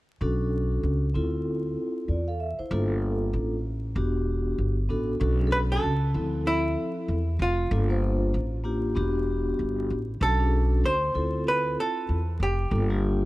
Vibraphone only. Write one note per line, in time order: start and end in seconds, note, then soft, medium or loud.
0.21 1.05 C#4 medium
0.21 1.05 D4 medium
0.21 1.05 F#4 medium
0.21 1.05 A4 medium
1.14 2.16 C4 medium
1.14 2.08 E4 medium
1.14 2.08 F4 medium
1.14 2.09 A4 medium
2.09 2.27 F4 soft
2.09 2.27 D5 medium
2.28 2.40 A4 medium
2.28 2.39 F5 medium
2.40 2.58 E5 medium
2.59 2.89 E4 medium
2.59 2.88 C5 medium
2.71 3.55 A#3 medium
2.71 3.55 D4 medium
2.71 3.55 F4 medium
2.71 3.55 A4 medium
3.95 4.73 B3 medium
3.95 4.74 D4 medium
3.95 4.74 F#4 medium
3.95 4.74 G4 medium
4.89 5.12 B3 medium
4.89 5.12 D4 medium
4.89 5.13 F#4 medium
4.89 5.13 A4 medium
5.20 5.33 C#4 medium
5.20 5.33 D4 medium
5.20 5.33 F#4 medium
5.20 5.34 A4 medium
5.39 5.88 C#4 medium
5.39 5.88 D4 medium
5.39 5.88 F#4 medium
5.39 5.46 G#4 medium
5.47 5.92 A4 medium
6.14 7.16 F3 medium
6.14 7.16 C4 medium
6.14 7.16 E4 medium
6.14 7.16 A4 medium
7.71 7.83 A#3 medium
7.71 7.83 D4 medium
7.71 7.84 F4 medium
7.71 7.84 A4 medium
7.89 8.38 A#3 medium
7.89 8.38 D4 medium
7.89 8.38 F4 medium
7.89 8.38 C5 medium
8.64 8.96 A#3 medium
8.64 8.94 D4 medium
8.64 8.96 F4 medium
8.64 8.95 G4 medium
8.95 9.97 B3 medium
8.95 9.97 D4 medium
8.95 9.97 F#4 medium
8.95 9.98 G4 medium
10.21 10.33 C#4 medium
10.21 10.33 D4 medium
10.21 10.34 F#4 medium
10.21 10.34 A4 medium
10.39 10.88 C#4 medium
10.39 10.88 D4 medium
10.39 10.88 F#4 medium
10.39 10.45 G#4 medium
10.47 10.92 A4 medium
11.14 12.16 C4 medium
11.14 12.16 E4 medium
11.14 12.16 F4 medium
11.14 12.16 A4 medium
12.70 12.83 A#3 medium
12.70 12.83 D4 medium
12.70 12.84 F4 medium
12.70 12.84 A4 medium
12.89 13.25 A#3 medium
12.89 13.25 D4 medium
12.89 13.25 F4 medium
12.89 13.25 G4 medium